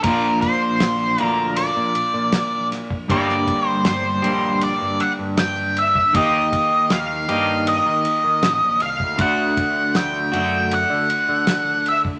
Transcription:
0.03 0.37 A#1 medium
0.03 1.16 A#2 medium
0.03 1.17 F3 medium
0.03 1.20 A#3 medium
0.03 1.19 D4 medium
0.03 0.41 A#4 medium
0.03 kick loud
0.03 ride medium
0.08 1.17 F4 medium
0.41 1.23 C5 medium
0.41 kick medium
0.41 ride medium
0.80 1.14 A#1 medium
0.80 snare loud
0.80 ride medium
1.18 1.69 D2 medium
1.18 3.08 A#2 medium
1.18 3.08 F3 medium
1.18 3.10 A#3 medium
1.18 3.07 D4 medium
1.18 3.07 F4 medium
1.18 ride medium
1.23 1.60 A#4 medium
1.56 2.67 D5 medium
1.56 ride medium
1.76 1.93 A#2 medium
1.95 ride medium
2.14 2.97 A#2 medium
2.32 snare loud
2.32 ride medium
2.72 snare soft
2.72 ride medium
2.90 kick medium
3.08 3.43 G1 medium
3.08 4.21 G2 medium
3.08 4.21 D3 medium
3.08 4.24 G3 medium
3.08 4.23 A#3 loud
3.08 4.22 D4 medium
3.08 4.22 G4 loud
3.08 3.68 D5 medium
3.08 kick loud
3.08 ride medium
3.29 snare soft
3.47 kick medium
3.47 ride medium
3.68 3.86 C5 medium
3.85 4.19 G1 medium
3.85 4.64 C5 medium
3.85 snare medium
3.85 ride medium
4.22 4.73 A#1 medium
4.22 6.13 G2 medium
4.22 6.13 D3 medium
4.22 6.12 G3 medium
4.22 6.12 A#3 medium
4.22 6.12 D4 medium
4.22 6.11 G4 medium
4.22 ride medium
4.61 5.02 D5 loud
4.61 ride medium
4.81 4.97 G2 medium
5.00 5.11 F#5 medium
5.00 ride medium
5.19 6.02 G2 medium
5.37 5.78 G5 medium
5.37 snare medium
5.37 ride medium
5.77 6.15 E5 medium
5.77 ride medium
5.95 kick medium
6.13 6.48 D#2 medium
6.13 7.26 D#3 medium
6.13 7.26 A#3 medium
6.13 7.27 D#4 medium
6.13 7.28 G4 medium
6.13 6.92 D#5 medium
6.13 kick loud
6.13 ride medium
6.52 kick medium
6.52 ride medium
6.90 7.24 D#2 medium
6.90 7.68 F5 medium
6.90 snare loud
6.90 ride medium
7.28 7.78 G2 medium
7.28 9.17 D#3 medium
7.28 9.18 A#3 medium
7.28 9.18 D#4 medium
7.28 9.17 G4 medium
7.28 ride medium
7.67 8.82 D#5 medium
7.67 ride medium
7.86 8.03 D#3 medium
8.05 ride medium
8.24 8.41 D#3 medium
8.43 8.60 A1 medium
8.43 snare loud
8.43 ride medium
8.62 8.79 A#1 medium
8.80 8.98 C2 medium
8.80 9.21 F5 medium
8.80 ride medium
9.00 9.17 D2 medium
9.00 kick medium
9.18 9.52 D2 medium
9.18 10.31 D3 medium
9.18 10.32 A3 medium
9.18 10.33 D4 medium
9.18 9.97 F#5 medium
9.18 kick loud
9.18 ride medium
9.22 10.31 F#4 medium
9.57 kick medium
9.57 ride medium
9.95 10.29 D2 medium
9.95 10.74 G5 medium
9.95 snare loud
9.95 ride medium
10.32 10.83 F#2 medium
10.32 12.19 D3 medium
10.32 12.19 A3 medium
10.32 12.19 D4 medium
10.32 12.19 F#4 medium
10.32 ride medium
10.71 11.91 F#5 medium
10.71 ride medium
10.90 11.07 D3 medium
11.10 ride medium
11.29 12.12 D3 medium
11.47 snare loud
11.47 ride medium
11.86 11.98 E5 medium
11.86 ride medium
12.05 kick medium

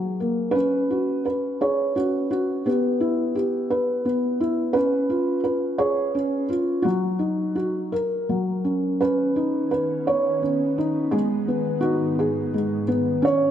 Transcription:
0.00 0.55 F#3 medium
0.00 0.54 G#4 medium
0.20 0.55 A#3 medium
0.51 1.95 C#4 medium
0.51 1.24 B4 medium
0.91 1.94 F#4 medium
1.25 2.66 B4 medium
1.61 1.94 G#4 medium
1.61 2.67 C#5 medium
1.96 2.67 C#4 medium
1.96 2.29 F#4 medium
2.31 2.64 F#4 medium
2.66 4.04 B3 medium
2.66 3.34 G4 medium
3.00 4.39 E4 medium
3.35 4.75 G4 medium
3.70 4.72 B4 medium
4.05 4.75 B3 medium
4.40 4.75 E4 medium
4.73 6.13 C#4 medium
4.73 5.39 B4 medium
5.10 6.48 F4 medium
5.44 6.85 B4 medium
5.78 6.45 G#4 medium
5.78 6.84 C#5 medium
6.15 6.85 C#4 medium
6.50 6.85 F4 medium
6.82 7.92 F#3 medium
6.82 7.54 F#4 medium
7.19 7.92 D#4 medium
7.55 7.92 F#4 medium
7.92 9.01 A#4 medium
8.29 9.01 F#3 medium
8.64 9.00 C#4 medium
9.01 13.19 D#3 medium
9.01 13.20 B3 medium
9.01 11.11 C#4 medium
9.01 10.41 C#4 medium
9.01 9.70 B4 medium
9.36 10.76 D#4 medium
9.71 11.12 B4 medium
10.07 11.13 C#5 medium
10.42 11.13 C#4 medium
10.78 11.13 D#4 medium
11.11 13.21 G#2 medium
11.11 12.52 G#3 medium
11.11 11.78 G#4 medium
11.48 12.86 B3 medium
11.81 13.24 D#4 medium
11.81 12.83 F#4 medium
12.19 13.24 G#4 medium
12.54 13.24 G#3 medium
12.88 13.23 B3 medium
13.22 13.51 C#3 medium
13.22 13.51 G#3 medium
13.22 13.51 C#4 medium
13.22 13.51 E4 medium
13.22 13.51 C#5 medium

